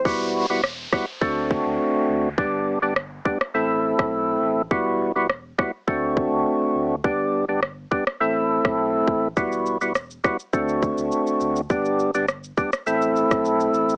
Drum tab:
SH |----------------|----------------|----------------|----------------|
SD |----r-r---------|----r--r---r----|----r-r---------|----r--r---r----|
BD |o-----o-o-o-----|o-----o----o----|o-----o-o-o-----|o-----o----o--o-|

SH |xxxxxxxxxxxxxxxx|xxxxxxxxxxxxxxxx|
SD |----r-r---------|----r--r---r----|
BD |o-----o-o-o-----|o-----o----o----|